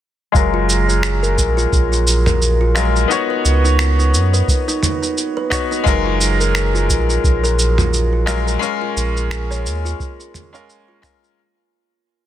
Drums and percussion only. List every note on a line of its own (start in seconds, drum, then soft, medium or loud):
0.34 kick loud
0.34 shaker soft
0.70 shaker medium
0.89 shaker soft
1.03 finger snap medium
1.03 shaker soft
1.24 shaker soft
1.38 kick medium
1.38 shaker medium
1.58 shaker soft
1.72 kick medium
1.72 shaker soft
1.93 shaker soft
2.07 shaker medium
2.26 mid tom medium
2.26 shaker soft
2.42 shaker soft
2.76 finger snap medium
2.76 shaker medium
2.96 shaker soft
3.11 shaker soft
3.45 shaker medium
3.65 shaker soft
3.79 finger snap medium
3.79 shaker soft
4.00 shaker soft
4.14 shaker medium
4.34 shaker soft
4.48 kick medium
4.48 shaker soft
4.69 shaker soft
4.83 mid tom medium
4.83 shaker medium
5.03 shaker soft
5.18 shaker soft
5.51 finger snap medium
5.51 kick medium
5.51 shaker medium
5.72 shaker soft
5.86 kick loud
5.86 shaker soft
6.21 shaker medium
6.41 shaker soft
6.55 finger snap medium
6.55 shaker soft
6.75 shaker soft
6.89 kick medium
6.89 shaker medium
7.10 shaker soft
7.24 kick loud
7.24 shaker soft
7.44 shaker soft
7.59 shaker medium
7.78 mid tom medium
7.78 shaker soft
7.94 shaker soft
8.27 finger snap medium
8.27 shaker medium
8.48 shaker soft
8.63 shaker soft
8.97 shaker medium
9.17 shaker soft
9.31 finger snap medium
9.31 shaker soft
9.52 shaker soft
9.66 shaker medium
9.86 shaker soft
10.00 kick loud
10.00 shaker soft
10.20 shaker soft
10.34 mid tom medium
10.34 shaker medium
10.55 shaker soft
10.70 shaker soft
11.03 finger snap medium
11.03 kick medium
11.03 shaker medium
11.24 shaker soft